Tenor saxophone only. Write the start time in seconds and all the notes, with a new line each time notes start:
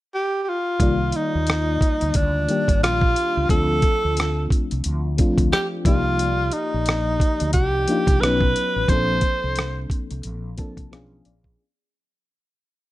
0.14 G4
0.43 G4
0.49 F4
1.16 D#4
2.16 D4
2.83 F4
3.50 A4
5.52 G4
5.86 F4
6.53 D#4
7.53 G4
8.21 B4
8.89 C5